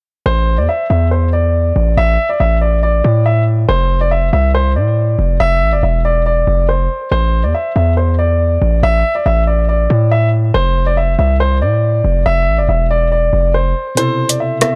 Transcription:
0.26 A1 C5
0.58 E2 D5
0.69 E5
0.90 E2 E5
1.11 C5
1.33 D5
1.76 A1
1.97 A1 E5
2.29 D5
2.40 A1 E5
2.61 D5
2.83 D5
3.04 A2
3.26 E5
3.69 F1 C5
4.01 D5
4.11 E5
4.33 C2 E5
4.55 C5
4.76 A2 D5
5.19 F1
5.40 F1 E5
5.61 A1
5.72 F1 D5
5.83 E1 E5
6.05 D5
6.26 D5
6.47 F1
6.69 C5
7.12 A1 C5
7.44 E2 D5
7.55 E5
7.76 E2 E5
7.97 C5
8.19 D5
8.62 A1
8.83 A1 E5
9.15 D5
9.26 A1 E5
9.47 D5
9.69 D5
9.90 A2
10.12 E5
10.54 F1 C5
10.86 D5
10.97 E5
11.19 C2 E5
11.40 C5
11.62 A2 D5
12.04 F1
12.26 F1 E5
12.47 A1
12.58 F1 D5
12.69 E1 E5
12.91 D5
13.12 D5
13.33 F1
13.54 C5
13.95 B2 C3 E4 C5, closed hi-hat
14.00 A4
14.29 D5, closed hi-hat
14.40 E5
14.59 C3 B3 E4 E5, cross-stick, closed hi-hat
14.64 A4

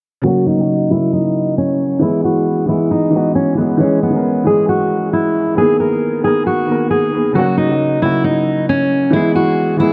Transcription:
0.22 C#3 F#3 A#3 F#4
0.27 F#4
0.46 D#4
0.55 C#3 F#3 A#3
0.61 F#4
0.88 C#3 F#3 A#3 E4
0.94 F#4
1.13 D#4
1.58 C#4
1.99 E3 G#3 B3 E4
2.05 G#4
2.24 F#4
2.66 E3 G#3 B3 E4
2.72 G#4
2.91 D#4
3.10 E3 G#3 B3
3.16 F#4
3.35 C#4
3.55 E3 G#3 B3
3.61 G#4
3.77 E3 G#3 C#4
3.83 G#4
4.03 B3
4.11 E3 G#3 C#4
4.16 A#4
4.44 E3 G#3 C#4 G#4
4.50 G#4
4.69 F#4
5.13 E4
5.55 D#3 A#3 B3 G#4
5.60 G#4
5.80 A#4
6.21 D#3 A#3 B3 G#4
6.27 A#4
6.47 F#4
6.66 D#3 A#3 B3
6.71 A#4
6.91 G#4
7.11 D#3 A#3 B3
7.16 G#4
7.33 C#3 F#3 A#3 F#4
7.39 F#4
7.57 D#4
7.66 C#3 F#3 A#3
7.72 F#4
7.99 C#3 F#3 A#3 E4
8.05 F#4
8.24 D#4
8.69 C#4
9.11 E3 G#3 B3 E4
9.16 G#4
9.35 F#4
9.77 E3 G#3 B3 E4
9.83 G#4

